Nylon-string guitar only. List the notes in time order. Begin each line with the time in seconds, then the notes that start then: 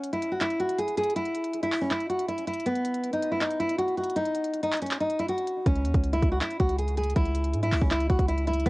Already playing: C#4
0.13 E4
0.32 F#4
0.41 E4
0.60 F#4
0.78 G#4
0.98 G#4
1.16 E4
1.63 E4
1.81 C#4
1.91 E4
2.10 F#4
2.28 E4
2.47 E4
2.66 B3
3.13 D#4
3.32 E4
3.41 D#4
3.60 E4
3.78 F#4
3.97 F#4
4.16 D#4
4.63 D#4
4.82 C#4
5.00 D#4
5.19 E4
5.29 F#4
5.66 C#4
6.13 E4
6.32 F#4
6.41 E4
6.60 F#4
6.78 G#4
6.97 G#4
7.16 E4
7.63 E4
7.82 C#4
7.91 E4
8.10 F#4
8.28 E4
8.47 E4
8.66 B3